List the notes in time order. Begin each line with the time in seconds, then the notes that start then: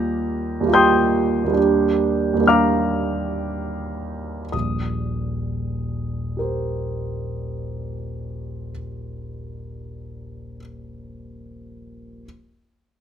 Already playing: D#2 G3 A#3 F4 G4 A#5 D#6 G6 A#6
0.61 D#2 G3
0.66 A#3 F4
0.71 G4 G5 C6 D#6 G6
1.44 D#2 G3
1.50 A#3 D4
1.56 G4
2.34 D#2 G3
2.40 A#3 D4
2.46 G4 F5 A#5 D6 F6
4.52 D#1 A#1 D#6
6.37 G4 A#4 C5